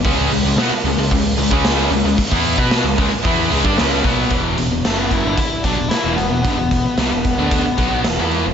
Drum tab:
HH |o-o-o-o-o-o-o-o-|o-o-o-o-o-o-o-o-|x-x-x-x-x-x-x-x-|x-x-x-x-x-x-x-x-|
SD |----o-------o---|----o-------o---|----o-------o---|----o-------o---|
BD |o-------o--o----|oo-o--o-o--o--o-|o-----o-o-o-----|o-o---o-o-o-----|